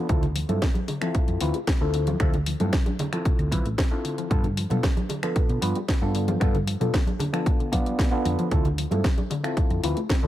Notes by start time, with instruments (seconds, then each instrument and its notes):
0.09 fingered electric bass D2, synth arpeggio sound C3, reed electric piano C4 E4 F4 A4, kick, closed hi-hat
0.23 synth arpeggio sound D3, closed hi-hat, low conga
0.36 synth arpeggio sound F3, open hi-hat
0.49 fingered electric bass G2, synth arpeggio sound A3, reed electric piano C4 E4 F4 A4, closed hi-hat, high conga
0.62 synth arpeggio sound C4, kick, snare, closed hi-hat
0.74 synth arpeggio sound D4, closed hi-hat, high bongo, high conga
0.88 synth arpeggio sound D3, open hi-hat, high bongo
1.01 synth arpeggio sound F3, reed electric piano C4 E4 F4 A4, finger snap, closed hi-hat
1.15 synth arpeggio sound C3, muted fingered electric bass stroke, kick, closed hi-hat
1.28 fingered electric bass F2, synth arpeggio sound D3, closed hi-hat
1.41 fingered electric bass D2, synth arpeggio sound F3, reed electric piano C4 E4 F4 B4, open hi-hat
1.54 synth arpeggio sound A3, closed hi-hat, high bongo
1.67 synth arpeggio sound C4, kick, snare, closed hi-hat
1.81 fingered electric bass D2, reed electric piano C4 E4 F4 A4, synth arpeggio sound D4
1.94 synth arpeggio sound D3, open hi-hat
2.07 synth arpeggio sound F3, closed hi-hat, high bongo, high conga
2.20 fingered electric bass D2, synth arpeggio sound C3, reed electric piano C4 E4 F4 A4, finger snap, kick, closed hi-hat
2.34 synth arpeggio sound D3, closed hi-hat, low conga
2.46 synth arpeggio sound F3, open hi-hat
2.60 fingered electric bass G2, synth arpeggio sound A3, reed electric piano C4 E4 F4 A4, closed hi-hat, high conga
2.73 synth arpeggio sound C4, kick, snare, closed hi-hat
2.86 synth arpeggio sound D4, closed hi-hat, high bongo, high conga
2.99 synth arpeggio sound D3, open hi-hat, high bongo, low conga
3.12 synth arpeggio sound F3, reed electric piano C4 E4 F4 A4, finger snap, closed hi-hat
3.25 synth arpeggio sound C3, kick, closed hi-hat
3.39 fingered electric bass D2, synth arpeggio sound D3, closed hi-hat
3.51 synth arpeggio sound F3, reed electric piano C4 E4 F4 B4, kick, open hi-hat, high conga
3.65 fingered electric bass A1, synth arpeggio sound A3, closed hi-hat
3.78 synth arpeggio sound C4, kick, snare, closed hi-hat
3.91 reed electric piano C4 E4 F4 A4, synth arpeggio sound D4
4.05 synth arpeggio sound D3, open hi-hat
4.18 synth arpeggio sound F3, closed hi-hat
4.30 fingered electric bass G2, synth arpeggio sound B2, reed electric piano B3 D4 F4 A4, kick, closed hi-hat
4.44 synth arpeggio sound D3, closed hi-hat, low conga
4.57 synth arpeggio sound F3, open hi-hat
4.70 fingered electric bass B2, synth arpeggio sound G3, reed electric piano B3 D4 F4 A4, closed hi-hat, high conga
4.83 synth arpeggio sound B3, kick, snare, closed hi-hat
4.97 synth arpeggio sound D4, closed hi-hat, high bongo, high conga
5.09 synth arpeggio sound D3, open hi-hat, high bongo
5.23 synth arpeggio sound F3, reed electric piano B3 D4 F4 A4, finger snap, closed hi-hat
5.36 synth arpeggio sound B2, muted fingered electric bass stroke, kick, closed hi-hat
5.49 fingered electric bass B2, synth arpeggio sound D3, closed hi-hat
5.61 fingered electric bass G2, synth arpeggio sound F3, reed electric piano B3 D4 F4 B4, open hi-hat
5.75 synth arpeggio sound G3, closed hi-hat, high bongo
5.88 synth arpeggio sound B3, kick, snare, closed hi-hat
6.01 fingered electric bass G2, reed electric piano B3 D4 F4 A4, synth arpeggio sound D4
6.15 synth arpeggio sound D3, open hi-hat
6.28 synth arpeggio sound F3, closed hi-hat, high bongo, high conga
6.40 fingered electric bass G2, synth arpeggio sound B2, reed electric piano B3 D4 F4 A4, finger snap, kick, closed hi-hat
6.54 synth arpeggio sound D3, closed hi-hat, low conga
6.67 synth arpeggio sound F3, open hi-hat
6.80 fingered electric bass B2, synth arpeggio sound G3, reed electric piano B3 D4 F4 A4, closed hi-hat, high conga
6.94 synth arpeggio sound B3, kick, snare, closed hi-hat
7.07 synth arpeggio sound D4, closed hi-hat, high bongo, high conga
7.19 synth arpeggio sound D3, open hi-hat, high bongo, low conga
7.33 synth arpeggio sound F3, reed electric piano B3 D4 F4 A4, finger snap, closed hi-hat
7.46 synth arpeggio sound B2, kick, closed hi-hat
7.60 synth arpeggio sound D3, closed hi-hat
7.72 synth arpeggio sound F3, reed electric piano B3 D4 F4 D5, kick, open hi-hat, high conga
7.86 synth arpeggio sound G3, closed hi-hat
7.99 synth arpeggio sound B3, kick, snare, closed hi-hat
8.11 reed electric piano B3 D4 F4 A4, synth arpeggio sound D4
8.25 fingered electric bass F2, synth arpeggio sound D3, open hi-hat
8.39 synth arpeggio sound F3, closed hi-hat
8.51 fingered electric bass D2, synth arpeggio sound C3, reed electric piano C4 E4 F4 A4, kick, closed hi-hat
8.65 synth arpeggio sound D3, closed hi-hat, low conga
8.78 synth arpeggio sound F3, open hi-hat
8.91 fingered electric bass G2, synth arpeggio sound A3, reed electric piano C4 E4 F4 A4, closed hi-hat, high conga
9.04 synth arpeggio sound C4, kick, snare, closed hi-hat
9.18 synth arpeggio sound D4, closed hi-hat, high bongo, high conga
9.30 synth arpeggio sound D3, open hi-hat, high bongo
9.43 synth arpeggio sound F3, reed electric piano C4 E4 F4 A4, finger snap, closed hi-hat
9.57 synth arpeggio sound C3, muted fingered electric bass stroke, kick, closed hi-hat
9.70 fingered electric bass F2, synth arpeggio sound D3, closed hi-hat
9.83 fingered electric bass D2, synth arpeggio sound F3, reed electric piano C4 E4 F4 B4, open hi-hat
9.97 synth arpeggio sound A3, closed hi-hat, high bongo
10.09 synth arpeggio sound C4, kick, snare, closed hi-hat
10.22 fingered electric bass D2, reed electric piano C4 E4 F4 A4, synth arpeggio sound D4